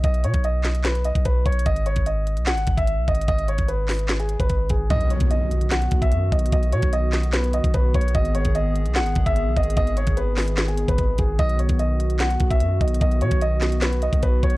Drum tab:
HH |x--x--x--x--x-----x--x--x--x--x--x--x-----x-x-x-|x--x--x--x--x-----x--x--x--x--x--x--x-----x-x-x-|x--x--x--x--x-----o--x--x--x--x--x--x-----x-----|x--x--x--x--x-----x--x--x--x--x--x--x-----x-x-x-|
CP |------------------x-----x-----------------------|------------------------x-----------------------|------------------x-----x-----------------------|------------------------x-----------------------|
SD |------------------o-----o-----------------------|------------------------o-----------------------|------------------o-----o-----------------------|------------------------o-----------------------|
BD |o--------o-----------------------o--o-----o-----|o--------o--------------------o--o--------o-----|o--------o-----------------------o--o-----o-----|o--------o--------------------o--o--------o-----|

HH |x--x--x--x--x-----x--x--x--x--x--x--x-----x-x-x-|x--x--x--x--x-----x--x--x--x--x--x--x-----x-x-x-|x--x--x--x--x-----o--x--x--x--x--x--x-----x-----|x--x--x--x--x-----x--x--x--x--x--x--x-----x-x-x-|
CP |------------------x-----x-----------------------|------------------------x-----------------------|------------------x-----x-----------------------|------------------------x-----------------------|
SD |------------------o-----o-----------------------|------------------------o-----------------------|------------------o-----o-----------------------|------------------------o-----------------------|
BD |o--------o-----------------------o--o-----o-----|o--------o--------------------o--o--------o-----|o--------o-----------------------o--o-----o-----|o--------o--------------------o--o--------o-----|

HH |x--x--x--x--x-----x--x--x--x--x--x--x-----x-x---|
CP |------------------x-----x-----------------------|
SD |------------------o-----o-----------------------|
BD |o--------o-----------------------o--o-----o-----|